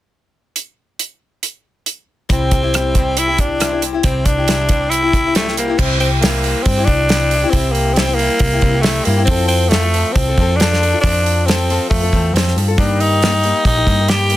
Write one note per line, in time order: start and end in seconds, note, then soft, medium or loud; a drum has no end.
0.56 closed hi-hat soft
0.99 closed hi-hat medium
1.43 closed hi-hat soft
1.86 closed hi-hat soft
2.29 4.01 C2 medium
2.29 2.62 C3 medium
2.29 2.62 G3 medium
2.29 2.62 C4 medium
2.29 3.20 C4 medium
2.29 2.62 E4 medium
2.29 2.61 G4 medium
2.29 kick medium
2.29 closed hi-hat medium
2.51 kick medium
2.51 closed hi-hat soft
2.62 2.73 C4 soft
2.62 2.73 E4 soft
2.62 2.73 G4 medium
2.74 2.95 C3 medium
2.74 2.94 G3 medium
2.74 2.94 C4 medium
2.74 2.95 E4 medium
2.74 2.96 G4 medium
2.74 cross-stick medium
2.74 closed hi-hat medium
2.95 3.28 G3 medium
2.95 3.28 C4 medium
2.95 3.27 E4 medium
2.95 3.26 G4 medium
2.95 kick medium
2.95 closed hi-hat medium
3.17 3.42 E4 medium
3.17 closed hi-hat medium
3.27 3.60 C4 soft
3.27 3.59 E4 soft
3.27 3.60 G4 soft
3.38 3.83 D4 medium
3.38 kick medium
3.38 closed hi-hat medium
3.60 3.71 C3 medium
3.60 3.71 G3 medium
3.60 3.72 C4 medium
3.60 3.71 E4 medium
3.60 3.70 G4 medium
3.60 cross-stick medium
3.60 closed hi-hat medium
3.71 3.81 C4 soft
3.71 3.82 E4 soft
3.71 3.82 G4 soft
3.81 3.93 G3 soft
3.81 3.93 C4 soft
3.81 3.93 E4 medium
3.81 3.91 G4 medium
3.81 closed hi-hat medium
3.93 4.04 C4 soft
3.93 4.04 E4 soft
3.93 4.04 G4 soft
4.03 5.75 C2 medium
4.03 4.37 C3 medium
4.03 4.37 G3 medium
4.03 4.27 C4 medium
4.03 4.37 C4 medium
4.03 4.37 E4 medium
4.03 4.36 G4 medium
4.03 kick medium
4.03 closed hi-hat medium
4.26 4.91 D4 medium
4.26 kick medium
4.26 closed hi-hat medium
4.37 4.48 C4 soft
4.37 4.48 E4 soft
4.37 4.48 G4 medium
4.48 4.70 C3 medium
4.48 4.67 G3 medium
4.48 4.68 C4 medium
4.48 4.69 E4 medium
4.48 4.69 G4 medium
4.48 snare medium
4.48 closed hi-hat medium
4.69 5.02 G3 medium
4.69 5.02 C4 medium
4.69 5.02 E4 medium
4.69 5.01 G4 medium
4.69 kick medium
4.69 closed hi-hat medium
4.90 5.34 E4 medium
4.90 closed hi-hat medium
5.02 5.25 C4 soft
5.02 5.25 E4 soft
5.02 5.24 G4 medium
5.13 kick medium
5.13 closed hi-hat medium
5.25 5.35 C4 soft
5.25 5.36 E4 soft
5.25 5.35 G4 soft
5.35 5.46 C3 medium
5.35 5.46 G3 medium
5.35 5.56 A3 medium
5.35 5.47 C4 medium
5.35 5.47 E4 medium
5.35 5.46 G4 medium
5.35 snare medium
5.35 closed hi-hat medium
5.47 5.57 C4 soft
5.47 5.58 E4 soft
5.47 5.57 G4 soft
5.47 snare soft
5.57 5.68 G3 medium
5.57 5.80 A#3 medium
5.57 5.68 C4 medium
5.57 5.68 E4 medium
5.57 5.66 G4 medium
5.57 closed hi-hat medium
5.68 5.78 C4 soft
5.68 5.78 E4 medium
5.68 5.79 G4 medium
5.78 6.53 C2 medium
5.78 6.21 C3 medium
5.78 6.21 G3 medium
5.78 6.00 C4 medium
5.78 6.23 C4 medium
5.78 6.22 E4 medium
5.78 6.22 G4 medium
5.78 kick medium
5.78 crash medium
6.00 6.10 C4 medium
6.00 open hi-hat soft
6.21 6.44 C3 medium
6.21 6.44 G3 medium
6.21 6.65 A#3 medium
6.21 6.44 C4 medium
6.21 6.45 E4 medium
6.21 6.45 G4 medium
6.21 snare loud
6.21 open hi-hat medium
6.44 6.77 G3 medium
6.44 6.78 C4 medium
6.44 6.78 E4 medium
6.44 6.76 G4 medium
6.44 open hi-hat soft
6.63 6.85 G2 medium
6.63 6.86 C4 medium
6.63 kick medium
6.63 open hi-hat medium
6.78 6.87 C4 soft
6.78 6.87 E4 soft
6.78 6.88 G4 medium
6.85 7.44 C2 medium
6.85 7.09 G3 soft
6.85 7.10 C4 medium
6.85 7.51 D4 loud
6.85 7.10 E4 medium
6.85 kick medium
6.85 open hi-hat soft
6.90 7.11 G4 medium
7.09 7.32 C3 medium
7.09 7.31 G3 medium
7.09 7.31 C4 medium
7.09 7.32 E4 medium
7.09 snare medium
7.09 open hi-hat medium
7.13 7.33 G4 medium
7.31 7.43 G3 soft
7.31 7.43 C4 soft
7.31 7.43 E4 soft
7.31 7.42 G4 soft
7.31 open hi-hat soft
7.43 7.54 C4 soft
7.43 7.54 E4 medium
7.43 7.54 G4 medium
7.50 8.28 C2 medium
7.50 7.96 G3 medium
7.50 7.74 C4 medium
7.50 kick medium
7.50 open hi-hat medium
7.55 7.96 C3 medium
7.55 7.98 C4 medium
7.55 7.98 E4 medium
7.55 7.98 G4 medium
7.72 7.96 A#3 medium
7.72 open hi-hat soft
7.94 8.08 C3 medium
7.94 8.08 G3 medium
7.94 8.16 C4 medium
7.94 snare medium
7.94 open hi-hat medium
7.98 8.08 C4 medium
7.98 8.07 E4 medium
7.98 8.06 G4 medium
8.07 8.19 C4 soft
8.07 8.19 E4 soft
8.07 8.18 G4 soft
8.15 8.82 A#3 medium
8.19 8.52 G3 medium
8.19 8.53 C4 medium
8.19 8.52 E4 medium
8.19 8.51 G4 medium
8.19 open hi-hat soft
8.39 8.59 C2 medium
8.39 kick medium
8.39 open hi-hat medium
8.52 8.62 C4 soft
8.52 8.63 E4 soft
8.52 8.63 G4 medium
8.61 9.00 C2 medium
8.61 8.73 G3 medium
8.61 8.74 C4 medium
8.61 8.74 E4 medium
8.61 8.73 G4 medium
8.61 kick medium
8.61 open hi-hat soft
8.74 8.85 C4 soft
8.74 8.85 E4 soft
8.74 8.85 G4 soft
8.81 9.06 A3 medium
8.81 snare medium
8.81 open hi-hat medium
8.85 9.07 C3 medium
8.85 9.05 G3 medium
8.85 9.06 C4 medium
8.85 9.07 E4 medium
8.85 9.07 G4 medium
9.05 9.25 G2 medium
9.05 9.17 G3 medium
9.05 9.24 A#3 medium
9.05 9.18 C4 medium
9.05 9.17 E4 medium
9.05 9.16 G4 medium
9.05 open hi-hat soft
9.17 9.28 C4 soft
9.17 9.28 E4 soft
9.17 9.28 G4 medium
9.25 10.03 F2 medium
9.25 9.47 C4 medium
9.25 kick medium
9.25 open hi-hat medium
9.29 9.71 F3 medium
9.29 9.72 C4 medium
9.29 9.72 F4 medium
9.29 9.73 A4 medium
9.48 9.70 C4 medium
9.48 open hi-hat soft
9.69 9.83 F3 medium
9.69 10.14 A3 medium
9.69 snare medium
9.69 open hi-hat medium
9.73 9.83 C4 medium
9.73 9.83 F4 medium
9.73 9.82 A4 medium
9.83 9.93 C4 soft
9.83 9.94 F4 soft
9.83 9.94 A4 soft
9.93 10.26 F3 medium
9.93 10.27 C4 medium
9.93 10.27 F4 medium
9.93 10.27 A4 medium
9.93 open hi-hat soft
10.13 10.34 C2 medium
10.13 10.58 C4 medium
10.13 kick medium
10.13 open hi-hat medium
10.28 10.39 C4 soft
10.28 10.38 F4 soft
10.28 10.38 A4 medium
10.38 10.93 F2 medium
10.38 10.49 F3 medium
10.38 10.49 C4 medium
10.38 10.49 F4 medium
10.38 10.48 A4 medium
10.38 kick medium
10.38 open hi-hat soft
10.49 10.59 C4 soft
10.49 10.59 F4 soft
10.49 10.59 A4 soft
10.56 10.80 F3 medium
10.56 11.00 D4 loud
10.56 open hi-hat medium
10.60 10.81 C4 medium
10.60 10.82 F4 medium
10.60 10.82 A4 medium
10.60 snare medium
10.73 snare soft
10.82 10.92 F3 medium
10.82 10.92 C4 soft
10.82 10.93 F4 soft
10.82 10.92 A4 medium
10.82 open hi-hat soft
10.93 11.04 C4 soft
10.93 11.04 F4 soft
10.93 11.03 A4 medium
11.01 11.78 F2 medium
11.01 11.47 F3 medium
11.01 11.47 D4 medium
11.01 kick loud
11.01 open hi-hat medium
11.06 11.47 C4 medium
11.06 11.47 F4 medium
11.06 11.48 A4 medium
11.26 open hi-hat soft
11.46 11.69 F3 medium
11.46 11.89 C4 medium
11.46 11.69 C4 medium
11.46 11.69 F4 medium
11.46 11.69 A4 medium
11.46 snare loud
11.46 open hi-hat medium
11.70 12.02 F3 medium
11.70 12.02 C4 medium
11.70 12.01 F4 medium
11.70 12.01 A4 medium
11.70 open hi-hat soft
11.90 12.09 F2 medium
11.90 12.36 A3 medium
11.90 kick loud
11.90 open hi-hat medium
12.02 12.13 C4 soft
12.02 12.12 F4 soft
12.02 12.12 A4 medium
12.13 12.32 E2 medium
12.13 12.34 F3 medium
12.13 12.34 C4 medium
12.13 12.34 F4 medium
12.13 12.35 A4 medium
12.13 kick medium
12.13 open hi-hat soft
12.33 12.53 F2 medium
12.33 12.56 F3 medium
12.33 12.55 C4 medium
12.33 12.56 C4 medium
12.33 12.56 F4 medium
12.33 snare loud
12.33 open hi-hat medium
12.37 12.57 A4 medium
12.47 snare soft
12.56 12.75 G2 medium
12.56 12.67 F3 medium
12.56 12.67 C4 medium
12.56 12.67 F4 medium
12.56 12.67 A4 medium
12.56 open hi-hat soft
12.68 12.78 C4 soft
12.68 12.79 F4 medium
12.68 12.78 A4 soft
12.78 13.52 G2 medium
12.78 13.20 G2 medium
12.78 13.20 D#3 medium
12.78 13.22 G3 medium
12.78 13.21 A#3 medium
12.78 13.03 D4 medium
12.78 13.21 D#4 medium
12.78 13.22 G4 medium
12.78 kick medium
12.78 open hi-hat medium
13.00 13.65 D#4 medium
13.00 open hi-hat soft
13.21 13.32 G2 medium
13.21 13.32 D#3 medium
13.21 13.32 G3 medium
13.21 13.32 A#3 medium
13.21 13.32 D#4 medium
13.21 13.32 G4 medium
13.21 snare loud
13.21 open hi-hat medium
13.33 13.42 G3 soft
13.33 13.43 A#3 soft
13.33 13.43 D#4 soft
13.33 13.43 G4 soft
13.43 13.75 G3 medium
13.43 13.76 A#3 medium
13.43 13.76 D#4 medium
13.43 13.75 G4 medium
13.43 open hi-hat soft
13.65 13.83 A#1 medium
13.65 14.11 D#4 medium
13.65 kick medium
13.65 open hi-hat medium
13.77 13.85 G3 soft
13.77 13.86 A#3 soft
13.77 13.86 D#4 soft
13.77 13.86 G4 medium
13.86 14.37 G2 medium
13.86 13.97 G3 medium
13.86 13.97 A#3 medium
13.86 13.97 D#4 medium
13.86 13.98 G4 medium
13.86 kick medium
13.86 open hi-hat soft
13.99 14.10 G3 soft
13.99 14.09 A#3 soft
13.99 14.09 D#4 soft
13.99 14.08 G4 soft
14.08 14.30 G2 medium
14.08 14.30 D#3 medium
14.08 14.29 G3 medium
14.08 14.30 A#3 medium
14.08 14.31 D#4 medium
14.08 14.37 G4 medium
14.08 14.31 G4 medium
14.08 snare medium
14.08 open hi-hat medium
14.30 14.37 G3 soft
14.30 14.37 A#3 soft
14.30 14.37 D#4 medium
14.30 14.37 G4 soft
14.30 open hi-hat medium